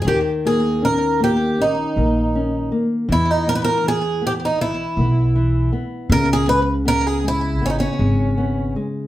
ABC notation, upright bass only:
X:1
M:4/4
L:1/8
Q:1/4=79
K:D#phr
V:1 name="Upright bass" clef=bass
D,,4 A,,, A,,,3 | E,,4 B,,, B,,,3 | C,,4 G,,, G,,,3 |]